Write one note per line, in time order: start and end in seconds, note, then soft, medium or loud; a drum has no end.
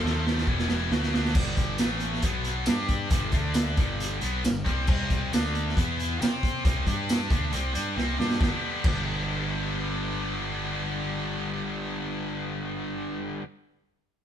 0.00 0.43 D#2 medium
0.00 0.23 A4 medium
0.04 0.24 F2 medium
0.04 0.25 C3 medium
0.04 0.25 F3 medium
0.04 0.25 A3 medium
0.04 0.26 C4 medium
0.04 0.27 F4 medium
0.04 snare medium
0.25 0.46 F2 medium
0.25 0.46 C3 medium
0.25 0.47 F3 medium
0.25 0.47 A3 loud
0.25 0.47 C4 medium
0.25 0.48 F4 medium
0.25 snare medium
0.38 snare medium
0.46 0.67 E1 medium
0.46 0.67 E2 loud
0.46 0.68 B2 loud
0.46 0.68 E3 loud
0.46 0.69 G3 loud
0.46 0.70 B3 loud
0.46 0.69 E4 loud
0.46 kick medium
0.59 snare medium
0.68 0.89 E1 medium
0.68 0.90 E2 medium
0.68 0.91 B2 medium
0.68 0.90 E3 loud
0.68 0.91 G3 medium
0.68 0.91 B3 medium
0.68 0.91 E4 loud
0.68 snare loud
0.91 1.11 D2 medium
0.91 1.13 D3 medium
0.91 1.14 A3 medium
0.91 1.14 D4 medium
0.91 1.15 F#4 loud
0.91 snare loud
1.03 snare medium
1.14 1.33 D2 medium
1.14 1.35 D3 medium
1.14 1.35 A3 medium
1.14 1.36 D4 medium
1.14 1.36 F#4 medium
1.14 snare loud
1.25 snare medium
1.35 1.77 G1 medium
1.35 1.79 G2 medium
1.35 1.79 D3 medium
1.35 1.80 G3 loud
1.35 kick loud
1.35 crash loud
1.57 kick medium
1.57 closed hi-hat medium
1.78 2.21 A1 loud
1.78 2.23 A2 medium
1.78 2.23 E3 medium
1.78 2.24 A3 loud
1.78 snare loud
1.78 closed hi-hat loud
1.78 tambourine loud
1.91 snare soft
2.00 closed hi-hat medium
2.13 snare soft
2.22 2.65 B1 medium
2.22 2.67 B2 medium
2.22 2.67 F#3 loud
2.22 2.68 B3 loud
2.22 kick medium
2.22 closed hi-hat loud
2.44 closed hi-hat medium
2.66 3.09 G2 loud
2.66 3.10 G3 medium
2.66 3.12 D4 medium
2.66 3.12 G4 loud
2.66 snare loud
2.66 closed hi-hat loud
2.66 tambourine loud
2.88 kick medium
2.88 closed hi-hat medium
3.10 3.32 G1 medium
3.10 3.32 G2 loud
3.10 3.32 D3 loud
3.10 3.33 G3 loud
3.10 kick loud
3.10 closed hi-hat loud
3.31 3.75 D2 loud
3.31 3.76 D3 medium
3.31 3.77 A3 loud
3.31 3.77 D4 loud
3.31 kick medium
3.31 closed hi-hat medium
3.54 snare loud
3.54 closed hi-hat loud
3.54 tambourine loud
3.67 snare soft
3.77 4.19 G1 medium
3.77 4.21 G2 medium
3.77 4.19 D3 loud
3.77 4.20 G3 loud
3.77 kick loud
3.77 closed hi-hat medium
4.00 closed hi-hat loud
4.19 4.43 B1 loud
4.19 4.42 B2 medium
4.19 4.43 F#3 loud
4.19 4.43 B3 loud
4.19 closed hi-hat medium
4.44 4.65 G1 medium
4.44 4.62 G2 medium
4.44 4.62 D3 medium
4.44 snare loud
4.44 closed hi-hat loud
4.44 tambourine loud
4.65 4.87 C2 loud
4.65 4.86 C3 medium
4.65 4.87 G3 medium
4.65 4.87 C4 loud
4.65 kick medium
4.65 closed hi-hat medium
4.87 5.29 C2 medium
4.87 5.32 C3 loud
4.87 5.32 G3 loud
4.87 5.32 C4 loud
4.87 kick loud
4.87 crash loud
5.10 kick medium
5.10 closed hi-hat medium
5.33 5.74 D2 medium
5.33 5.76 D3 medium
5.33 5.77 A3 medium
5.33 5.77 D4 loud
5.33 snare loud
5.33 closed hi-hat loud
5.33 tambourine loud
5.55 closed hi-hat medium
5.68 snare soft
5.77 6.18 E2 loud
5.77 6.21 E3 loud
5.77 6.21 B3 loud
5.77 6.21 E4 loud
5.77 kick medium
5.77 closed hi-hat loud
6.00 closed hi-hat medium
6.21 6.62 C3 medium
6.21 6.63 C4 medium
6.21 6.64 G4 medium
6.21 6.65 C5 medium
6.21 snare loud
6.21 closed hi-hat loud
6.21 tambourine loud
6.43 kick medium
6.43 closed hi-hat medium
6.64 6.85 C2 medium
6.64 6.86 C3 medium
6.64 6.85 G3 loud
6.64 6.86 C4 loud
6.64 kick loud
6.64 closed hi-hat loud
6.86 7.28 G2 loud
6.86 7.30 G3 medium
6.86 7.30 D4 loud
6.86 7.31 G4 loud
6.86 kick medium
6.86 closed hi-hat medium
7.09 snare loud
7.09 closed hi-hat loud
7.09 tambourine loud
7.22 snare soft
7.30 7.51 D2 loud
7.30 7.51 D3 medium
7.30 7.51 A3 loud
7.30 7.52 D4 loud
7.30 kick loud
7.30 closed hi-hat medium
7.52 7.74 C2 loud
7.52 7.74 C3 medium
7.52 7.72 G3 loud
7.52 7.74 C4 loud
7.52 closed hi-hat loud
7.73 7.96 G2 loud
7.73 7.95 G3 medium
7.73 7.96 D4 medium
7.73 7.96 G4 loud
7.73 closed hi-hat medium
7.95 8.17 C2 medium
7.95 8.17 C3 medium
7.95 8.17 G3 medium
7.95 8.18 C4 loud
7.95 snare medium
8.18 8.40 G2 medium
8.18 8.40 G3 medium
8.18 8.41 D4 loud
8.18 8.41 G4 loud
8.18 snare medium
8.30 snare loud
8.39 8.53 G1 medium
8.39 8.84 G2 medium
8.39 8.84 D3 loud
8.39 8.85 G3 loud
8.39 8.86 B3 loud
8.39 8.87 D4 loud
8.39 kick loud
8.39 snare medium
8.43 8.87 G4 loud
8.84 13.38 G1 loud
8.84 13.42 G2 medium
8.84 13.42 D3 loud
8.84 13.43 G3 loud
8.84 13.43 B3 loud
8.84 13.43 D4 loud
8.84 13.44 G4 loud
8.84 kick loud
8.84 crash medium